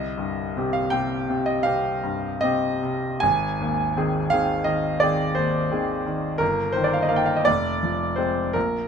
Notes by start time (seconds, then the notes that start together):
Already playing: C2 D#5
0.18 G2
0.57 C3 C4 G4
0.73 F5
0.90 C3 C4 G4 G5
1.30 C3
1.46 D#5
1.63 C3 C4 G4 F5
2.03 G2
2.41 C3 C4 G4 D#5
2.83 C3
3.20 G#1 G#5
3.60 D#2
3.96 D#3 C4 G#4
4.30 D#3 C4 G#4 F5
4.64 D#3 D#5
5.00 D#3 C4 G#4 D5
5.35 D#2 C5
5.71 D#3 C4 G#4
6.06 D#3
6.38 G1 A#4
6.72 D#3 C5
6.84 D5
6.93 F5
7.02 D#5
7.09 A#3 D#4 F5
7.16 G5
7.26 F5
7.36 D#5
7.45 F1 D5
7.83 F3
8.16 G#3 C4 C5
8.53 A#1 A#4